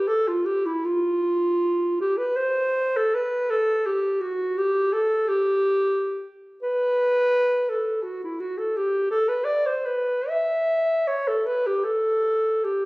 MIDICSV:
0, 0, Header, 1, 2, 480
1, 0, Start_track
1, 0, Key_signature, 1, "major"
1, 0, Tempo, 758534
1, 52, Time_signature, 3, 2, 24, 8
1, 1973, Tempo, 726392
1, 2453, Tempo, 715990
1, 3413, Tempo, 686499
1, 4853, Tempo, 711744
1, 6293, Tempo, 837989
1, 6773, Tempo, 771208
1, 7733, Tempo, 806452
1, 8330, End_track
2, 0, Start_track
2, 0, Title_t, "Clarinet"
2, 0, Program_c, 0, 71
2, 48, Note_on_c, 0, 69, 70
2, 175, Note_on_c, 0, 65, 57
2, 185, Note_off_c, 0, 69, 0
2, 288, Note_on_c, 0, 67, 63
2, 298, Note_off_c, 0, 65, 0
2, 415, Note_on_c, 0, 64, 59
2, 425, Note_off_c, 0, 67, 0
2, 536, Note_on_c, 0, 65, 67
2, 545, Note_off_c, 0, 64, 0
2, 1251, Note_off_c, 0, 65, 0
2, 1267, Note_on_c, 0, 67, 61
2, 1377, Note_on_c, 0, 71, 65
2, 1386, Note_off_c, 0, 67, 0
2, 1495, Note_on_c, 0, 72, 80
2, 1504, Note_off_c, 0, 71, 0
2, 1877, Note_on_c, 0, 69, 69
2, 1887, Note_off_c, 0, 72, 0
2, 1991, Note_on_c, 0, 71, 78
2, 2001, Note_off_c, 0, 69, 0
2, 2227, Note_on_c, 0, 69, 68
2, 2237, Note_off_c, 0, 71, 0
2, 2462, Note_on_c, 0, 67, 66
2, 2472, Note_off_c, 0, 69, 0
2, 2696, Note_on_c, 0, 66, 66
2, 2706, Note_off_c, 0, 67, 0
2, 2945, Note_on_c, 0, 67, 72
2, 2955, Note_off_c, 0, 66, 0
2, 3181, Note_on_c, 0, 69, 76
2, 3191, Note_off_c, 0, 67, 0
2, 3419, Note_on_c, 0, 67, 76
2, 3430, Note_off_c, 0, 69, 0
2, 4136, Note_off_c, 0, 67, 0
2, 4357, Note_on_c, 0, 71, 101
2, 5094, Note_on_c, 0, 69, 70
2, 5104, Note_off_c, 0, 71, 0
2, 5319, Note_on_c, 0, 66, 67
2, 5329, Note_off_c, 0, 69, 0
2, 5450, Note_off_c, 0, 66, 0
2, 5462, Note_on_c, 0, 64, 58
2, 5571, Note_on_c, 0, 66, 62
2, 5581, Note_off_c, 0, 64, 0
2, 5691, Note_on_c, 0, 69, 62
2, 5701, Note_off_c, 0, 66, 0
2, 5818, Note_on_c, 0, 67, 76
2, 5828, Note_off_c, 0, 69, 0
2, 6045, Note_off_c, 0, 67, 0
2, 6049, Note_on_c, 0, 69, 73
2, 6168, Note_on_c, 0, 71, 68
2, 6178, Note_off_c, 0, 69, 0
2, 6275, Note_on_c, 0, 74, 76
2, 6285, Note_off_c, 0, 71, 0
2, 6402, Note_on_c, 0, 72, 62
2, 6411, Note_off_c, 0, 74, 0
2, 6515, Note_on_c, 0, 71, 66
2, 6523, Note_off_c, 0, 72, 0
2, 6762, Note_on_c, 0, 76, 70
2, 6771, Note_off_c, 0, 71, 0
2, 7249, Note_on_c, 0, 73, 76
2, 7258, Note_off_c, 0, 76, 0
2, 7377, Note_on_c, 0, 69, 60
2, 7386, Note_off_c, 0, 73, 0
2, 7490, Note_on_c, 0, 71, 66
2, 7499, Note_off_c, 0, 69, 0
2, 7618, Note_on_c, 0, 67, 57
2, 7628, Note_off_c, 0, 71, 0
2, 7726, Note_on_c, 0, 69, 62
2, 7735, Note_off_c, 0, 67, 0
2, 8203, Note_on_c, 0, 67, 56
2, 8212, Note_off_c, 0, 69, 0
2, 8330, Note_off_c, 0, 67, 0
2, 8330, End_track
0, 0, End_of_file